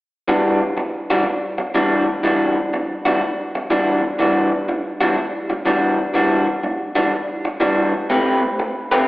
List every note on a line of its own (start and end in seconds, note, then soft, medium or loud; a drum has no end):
0.28 0.61 E3 medium
0.28 0.61 G3 medium
0.28 0.60 D4 medium
0.28 0.60 F#4 medium
0.62 muted clean electric guitar stroke soft
0.77 muted clean electric guitar stroke soft
1.10 1.24 E3 medium
1.10 1.25 G3 medium
1.10 1.25 D4 medium
1.10 1.25 F#4 medium
1.26 muted clean electric guitar stroke soft
1.58 muted clean electric guitar stroke soft
1.74 2.07 E3 medium
1.74 2.07 G3 medium
1.74 2.06 D4 medium
1.74 2.06 F#4 medium
2.08 muted clean electric guitar stroke soft
2.23 2.56 E3 medium
2.23 2.57 G3 medium
2.23 2.56 D4 medium
2.23 2.56 F#4 medium
2.57 muted clean electric guitar stroke soft
2.73 muted clean electric guitar stroke soft
3.05 3.21 E3 medium
3.05 3.21 G3 medium
3.05 3.21 D4 medium
3.05 3.21 F#4 medium
3.22 muted clean electric guitar stroke soft
3.55 muted clean electric guitar stroke soft
3.70 4.03 E3 medium
3.70 4.03 G3 medium
3.70 4.03 D4 medium
3.70 4.02 F#4 medium
4.03 muted clean electric guitar stroke soft
4.19 4.52 E3 medium
4.19 4.51 G3 medium
4.19 4.51 D4 medium
4.19 4.50 F#4 medium
4.51 muted clean electric guitar stroke soft
4.69 muted clean electric guitar stroke soft
5.01 5.16 E3 medium
5.01 5.17 G3 medium
5.01 5.17 D4 medium
5.01 5.17 F#4 medium
5.17 muted clean electric guitar stroke soft
5.50 muted clean electric guitar stroke soft
5.65 5.98 E3 medium
5.65 5.98 G3 medium
5.65 5.97 D4 medium
5.65 5.97 F#4 medium
5.98 muted clean electric guitar stroke soft
6.14 6.47 E3 medium
6.14 6.47 G3 medium
6.14 6.46 D4 medium
6.14 6.46 F#4 medium
6.47 muted clean electric guitar stroke soft
6.63 muted clean electric guitar stroke soft
6.95 7.11 E3 medium
6.95 7.11 G3 medium
6.95 7.12 D4 medium
6.95 7.12 F#4 medium
7.12 muted clean electric guitar stroke soft
7.45 muted clean electric guitar stroke soft
7.60 7.93 E3 medium
7.60 7.93 G3 medium
7.60 7.93 D4 medium
7.60 7.92 F#4 medium
7.94 muted clean electric guitar stroke soft
8.10 8.43 A3 medium
8.10 8.42 C4 medium
8.10 8.42 G4 medium
8.10 8.42 B4 medium
8.43 muted clean electric guitar stroke soft
8.60 muted clean electric guitar stroke soft
8.92 9.07 A3 medium
8.92 9.08 C4 medium
8.92 9.08 G4 medium
8.92 9.08 B4 medium